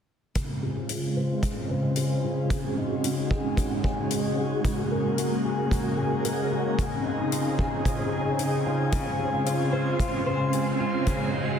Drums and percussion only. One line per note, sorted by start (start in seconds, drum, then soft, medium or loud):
0.35 kick medium
0.35 closed hi-hat medium
0.89 closed hi-hat medium
1.43 kick medium
1.43 closed hi-hat soft
1.96 closed hi-hat medium
2.50 kick medium
2.50 closed hi-hat medium
3.04 closed hi-hat medium
3.31 kick medium
3.57 kick medium
3.57 closed hi-hat medium
3.84 kick medium
4.11 closed hi-hat medium
4.65 kick medium
4.65 closed hi-hat soft
5.18 closed hi-hat medium
5.71 kick medium
5.71 closed hi-hat medium
6.25 closed hi-hat medium
6.79 kick medium
6.79 closed hi-hat medium
7.32 closed hi-hat medium
7.59 kick medium
7.85 kick medium
7.85 closed hi-hat medium
8.39 closed hi-hat medium
8.92 kick medium
8.92 closed hi-hat medium
9.46 closed hi-hat medium
10.00 kick medium
10.00 closed hi-hat medium
10.53 closed hi-hat medium
11.07 kick medium
11.07 closed hi-hat medium